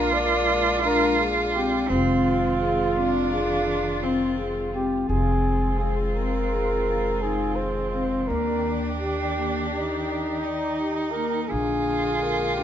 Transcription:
Already playing: upright bass A#1, string section A#2 G#3 D4, cello F4, flugelhorn A#4
0.13 vibraphone A#4, flugelhorn D5
0.84 vibraphone D4, flugelhorn A#4
1.20 vibraphone G#4
1.55 vibraphone C4, flugelhorn G4
1.89 upright bass F1, string section D#3 F4, cello C4, vibraphone C4, flugelhorn F4
2.61 vibraphone G#4
2.96 vibraphone C4, cello D4
3.32 vibraphone G#4
4.02 vibraphone C4, cello C4
4.38 vibraphone G#4
4.74 vibraphone C4, flugelhorn G4
5.09 upright bass F1, string section D#3 G#3 F4, cello C4, vibraphone C4, flugelhorn G#4
5.79 flugelhorn G#4, vibraphone G#4
6.15 vibraphone C4, flugelhorn A#4
6.52 vibraphone G#4
7.22 vibraphone D#4, flugelhorn G#4
7.56 vibraphone G#4, flugelhorn C5
7.94 vibraphone C4
8.28 upright bass D#2, vibraphone A#3, cello D4, string section G4 D5, flugelhorn A#4
8.98 flugelhorn G4, vibraphone G4
9.37 vibraphone A#3
9.69 flugelhorn D#4, vibraphone G4
10.42 cello D#4, vibraphone D5
10.80 vibraphone G4
11.11 vibraphone A#3, flugelhorn A#4
11.43 flugelhorn A#4
11.48 upright bass A#1, string section D3 G#3 A#3, vibraphone D4, cello F4, flugelhorn G#4
12.23 vibraphone A#4
12.54 flugelhorn G4
12.58 vibraphone D4

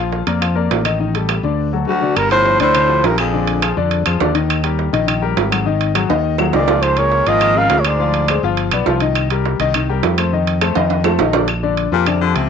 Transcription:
Already playing: fingered electric bass A#1, grand piano F3
0.00 grand piano F4 F5
0.12 low timbale
0.27 fingered electric bass F2, grand piano A#3 A#4 D5, high timbale
0.41 grand piano F3 F4 F5, high timbale, claves
0.56 grand piano A#3 A#4 D5
0.71 fingered electric bass A1, high timbale, low timbale
0.85 grand piano D#3 D#4 D#5, high timbale, claves
1.00 grand piano D#3 D#4 D#5
1.14 grand piano G3 G4 A4, high timbale
1.29 high timbale, low timbale, claves
1.43 fingered electric bass D2, grand piano D3 D4 D5
1.73 grand piano F#3 F#4 A4
1.87 baritone saxophone D2, grand piano F#3 F#4 A4, trumpet F#4
2.02 grand piano D3 D4 D5
2.16 fingered electric bass G1, baritone saxophone G2, trumpet A#4, high timbale, claves
2.31 baritone saxophone A2, grand piano F3 F4 G4, trumpet C5, high timbale
2.45 low timbale
2.60 fingered electric bass D2, baritone saxophone A2, grand piano D3 D4 D5, trumpet C5, high timbale
2.75 grand piano D3 D4, high timbale, claves
2.89 grand piano F3 F4 G4
3.04 fingered electric bass A#1, baritone saxophone G2, trumpet A#4, high timbale, low timbale
3.18 baritone saxophone F2, grand piano F3 F4 G#4, trumpet G#4, high timbale, claves
3.33 grand piano D3 D4 D5
3.47 high timbale
3.62 grand piano F3 F4 G#4, high timbale, low timbale, claves
3.77 fingered electric bass F2, grand piano D3 D4 D5
3.91 high timbale
4.06 fingered electric bass F2, grand piano F3 F4 G#4, high timbale, claves
4.20 fingered electric bass D#2, grand piano D3 D4 D5, low timbale
4.35 grand piano D#3 D#4 D#5, high timbale
4.50 high timbale, claves
4.64 grand piano G3 G4 A#4, high timbale
4.79 low timbale
4.93 fingered electric bass A#1, grand piano D#3 D#4 D#5, high timbale
5.07 grand piano D#3 D#4 D#5, high timbale, claves
5.22 grand piano G3 G4 A#4
5.37 fingered electric bass G#1, high timbale, low timbale
5.51 grand piano F#3 F#4 G#4, high timbale, claves
5.66 grand piano D#3 D#4 D#5
5.81 high timbale
5.95 grand piano F#3 F#4 G#4, high timbale, low timbale, claves
6.09 fingered electric bass D#2, grand piano D#3 D#4 D#5, high timbale
6.38 grand piano F#3 F#4 G#4, low timbale, claves
6.53 fingered electric bass C#2, baritone saxophone A#2, grand piano D#3 D#4 D#5, trumpet D5, low timbale
6.68 grand piano F3 F4 F5, low timbale
6.82 baritone saxophone G#2, trumpet C5, high timbale, claves
6.97 baritone saxophone A#2, grand piano G#3 G#4 A#4, trumpet C#5, high timbale
7.12 low timbale
7.26 fingered electric bass G#1, baritone saxophone A#2, grand piano F3 F4 F5, trumpet D#5, high timbale
7.41 grand piano F3 F4 F5, high timbale, claves
7.55 baritone saxophone C#3, grand piano G#3 G#4 A#4, trumpet F5
7.70 fingered electric bass D2, high timbale, low timbale
7.77 baritone saxophone A#2, trumpet C#5
7.85 baritone saxophone G#2, grand piano G#3 G#4 C5, trumpet D5, high timbale, claves
8.00 grand piano F3 F4 F5
8.14 high timbale
8.28 grand piano G#3 G#4 C5, high timbale, low timbale, claves
8.43 fingered electric bass G1, grand piano F3 F4 F5
8.57 high timbale
8.71 fingered electric bass B1, grand piano B3 B4 D5, high timbale, claves
8.86 fingered electric bass C2, grand piano F3 F4 F5, low timbale
9.00 grand piano D#3 D#4 D#5, high timbale
9.15 high timbale, claves
9.30 grand piano G3 G4 A#4, high timbale
9.45 low timbale
9.60 fingered electric bass C2, grand piano D#3 D#4 D#5, high timbale
9.74 grand piano D#3 D#4 D#5, high timbale, claves
9.89 grand piano G3 G4 A#4
10.03 fingered electric bass F2, high timbale, low timbale
10.18 grand piano A3 A4 C5, high timbale, claves
10.33 grand piano D#3 D#4 D#5
10.47 high timbale
10.61 grand piano A3 A4 C5, high timbale, low timbale, claves
10.75 fingered electric bass F2, grand piano D#3 D#4 D#5, high timbale
10.90 high timbale
11.04 grand piano A3 A4 C5, low timbale, claves
11.19 fingered electric bass A#1, grand piano D#3 D#4 D#5, low timbale
11.33 grand piano D3 D4 D5, low timbale
11.48 high timbale, claves
11.63 grand piano D3 D4 D5
11.77 high timbale
11.92 fingered electric bass F2, baritone saxophone A#2, grand piano F3 F4 G4
12.06 baritone saxophone C3, grand piano D3 D4 D5, high timbale, claves
12.21 baritone saxophone D3, grand piano F3 F4 G4
12.35 fingered electric bass C#2, baritone saxophone C3, high timbale

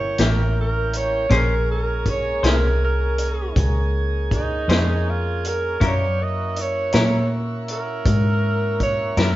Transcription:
Already playing: fingered electric bass G1, tonewheel organ E3 A#3 C#4 G4, tenor saxophone C#5
0.18 fingered electric bass A1, clean electric guitar E3 A#3 C#4 G4, tenor saxophone A#4, snare, closed hi-hat
0.61 tenor saxophone A#4
0.93 tenor saxophone C#5, closed hi-hat
1.30 fingered electric bass A#1, tonewheel organ G#3 A#3 C#4 G#4, clean electric guitar A#3 C#4 G#4 C5, kick, closed hi-hat
1.36 tenor saxophone A#4
1.71 tenor saxophone A#4
2.06 kick, closed hi-hat
2.10 tenor saxophone C#5
2.43 fingered electric bass C2, clean electric guitar A#3 C#4 G#4 C5, snare, closed hi-hat
2.48 tenor saxophone A#4
2.84 tenor saxophone A#4
3.18 closed hi-hat
3.56 fingered electric bass C#2, kick, closed hi-hat
4.31 tenor saxophone D#4, kick, closed hi-hat
4.68 fingered electric bass F2, clean electric guitar A#3 C#4 G#4 C5, snare, closed hi-hat
5.09 tenor saxophone F4
5.45 tenor saxophone A#4, closed hi-hat
5.80 fingered electric bass F#2, clean electric guitar F#3 C#4 E4 A#4, tonewheel organ B3 D4 F4 G4, kick, closed hi-hat
5.86 tenor saxophone C#5
6.19 tonewheel organ A#3 C#4 E4 F#4, tenor saxophone D#5
6.56 closed hi-hat
6.61 tenor saxophone C#5
6.92 fingered electric bass A#2, clean electric guitar F#3 C#4 E4 A#4, snare, closed hi-hat
7.68 tenor saxophone A#4, closed hi-hat
8.05 fingered electric bass G#2, kick, closed hi-hat
8.80 tenor saxophone C#5, kick, closed hi-hat
9.17 fingered electric bass F#2, clean electric guitar F#3 C#4 E4 A#4, tenor saxophone A#4, snare, closed hi-hat

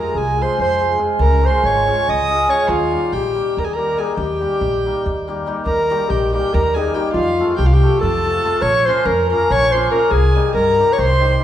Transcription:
Already playing: hammered dulcimer G#3, clarinet A#4
0.00 violin A#5
0.15 upright bass C2, clarinet G#4, violin G#5
0.37 hammered dulcimer G#3 C4 F4 G#4
0.42 clarinet C5, violin C6
0.58 upright bass F2, clarinet C5, violin C6
0.80 hammered dulcimer G#3 C4 F4 G#4
0.97 hammered dulcimer G#3 C4 F4 G#4
1.19 upright bass C#2, clarinet A#4, violin A#5
1.41 hammered dulcimer G#3 C#4 F4 G#4, clarinet C5
1.47 violin C6
1.63 upright bass G#1, clarinet C#5, violin C#6
1.86 hammered dulcimer G#3 C#4 F4 G#4
2.09 upright bass C#2, clarinet D#5, violin D#6
2.29 hammered dulcimer G#3 C#4 F4 G#4
2.47 hammered dulcimer G#3 C#4 F4 G#4, clarinet C#5, violin C#6
2.68 upright bass D#2, clarinet F4, violin F5
2.91 hammered dulcimer G3 A#3 D#4 G4
3.12 upright bass A#1, clarinet G4, violin G5
3.34 hammered dulcimer G3 A#3 D#4 G4
3.57 upright bass D#2, clarinet A#4, violin A#5
3.64 clarinet G#4, violin G#5
3.73 hammered dulcimer G3, clarinet A#4, violin A#5
3.78 hammered dulcimer A#3 D#4 G4
3.97 hammered dulcimer G3 A#3 D#4 G4, clarinet G#4, violin G#5
4.17 upright bass D#2, clarinet G4, violin G5
4.40 hammered dulcimer G3 A#3 D#4 G4
4.61 upright bass A#1
4.85 hammered dulcimer G3 A#3 D#4 G4
5.06 upright bass D#2
5.27 hammered dulcimer G3 A#3 D#4 G4
5.46 hammered dulcimer G3 A#3 D#4 G4
5.65 upright bass D#2, clarinet A#4, violin A#5
5.90 hammered dulcimer D#3 G3 A#3 D#4 G4
6.09 upright bass A#1, clarinet G4, violin G5
6.33 hammered dulcimer D#3 G3 A#3 D#4 G4, clarinet G4, violin G5
6.53 upright bass D#2, clarinet A#4, violin A#5
6.74 hammered dulcimer D#3 G3 A#3 D#4 G4, clarinet G#4, violin G#5
6.94 hammered dulcimer D#3 G3 A#3 D#4 G4, clarinet G4, violin G5
7.13 upright bass F2, clarinet F4, violin F5
7.39 hammered dulcimer F3 A3 C4 F4 A4
7.57 upright bass C2, clarinet G4, violin G5
7.65 clarinet F4, violin F5
7.73 clarinet G4, violin G5
7.82 hammered dulcimer F3 A3 C4 F4 A4
8.01 upright bass F2, clarinet A4, violin A5
8.25 hammered dulcimer F3 A3 C4 F4 A4
8.44 hammered dulcimer F3 A3 C4 F4 A4
8.62 upright bass A#1, clarinet C#5, violin C#6
8.86 hammered dulcimer F3 A#3 C#4 F4 A#4, clarinet C5, violin C6
9.05 upright bass F2, clarinet A#4, violin A#5
9.29 hammered dulcimer F3 A#3 C#4 F4 A#4, clarinet A#4, violin A#5
9.50 upright bass A#1, clarinet C#5, violin C#6
9.72 hammered dulcimer F3 A#3 C#4 F4 A#4, clarinet C5, violin C6
9.90 hammered dulcimer F3 A#3 C#4 F4 A#4, clarinet A#4, violin A#5
10.10 upright bass C2, clarinet G#4, violin G#5
10.35 hammered dulcimer D#3 G3 C4 D#4 G4
10.54 upright bass G2, clarinet A#4, violin A#5
10.79 hammered dulcimer D#3 G3 C4 D#4 G4
10.93 clarinet C#5, violin C#6
10.98 upright bass C2, clarinet C5, violin C6
11.20 hammered dulcimer D#3 G3 C4 D#4 G4
11.40 hammered dulcimer D#3 G3

